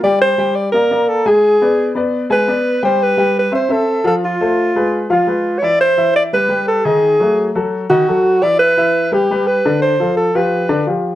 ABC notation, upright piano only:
X:1
M:4/4
L:1/8
Q:1/4=172
K:Gmix
V:1 name="Upright piano"
[G,Gg]2 [G,Gg]2 [_B,_Bd] [B,Bd]2 [_A,_A_a]- | [_A,_A_a] [B,Bd]2 [B,Bd]2 [^G,^G^g] [B,Bd]2 | [G,Gg]2 [G,Gg]2 [Cce] [Cce]2 [F,Ff]- | [F,Ff] [A,Ac]2 [_A,_AB]2 [F,Ff] [A,A_c]2 |
[E,Ee]2 [E,Ee]2 [G,GB] [G,GB]2 [_E,_E_e]- | [_E,_E_e] [^F,A,^F]2 [F,FA]2 [^D,^D^d] [F,FA]2 | [E,Ee]2 [E,Ee]2 [G,GB] [G,GB]2 [D,Dd]- | [D,Dd] [F,FA]2 [F,FG]2 [D,Dd] [F,FG]2 |]